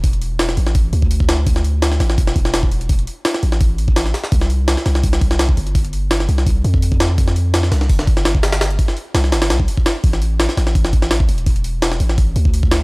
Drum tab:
HH |oxo-o-o-o-o-o-o-|o-o-o-o-o-o-o-ox|oxo-o-o-o-o-o-o-|o-o-o-o-o-o-o-ox|
SD |----oo-o------o-|-o--oooo-o-oo---|----oo-o----oooo|-o--oooo-o-oo---|
BD |o-------o--o-o--|o-------o-o--o--|o-------o--o----|o-------o-o--o--|

HH |oxo-o-o-o-o-o-o-|o-o-o-o-o-o-o-oo|oxo-o-o-ooo-o-o-|o-o-o-o-o-o-o-ox|
SD |----oo-o------o-|-o--oooo-o-oo-oo|o--o--ooooo---o-|-o--oooo-o-oo---|
BD |o-------o--o-o--|o-------o-o--o--|--o--------o-o--|o-------o-o--o--|

HH |oxo-o-o-o-o-o-o-|
SD |----oo-o------o-|
BD |o-------o--o-o--|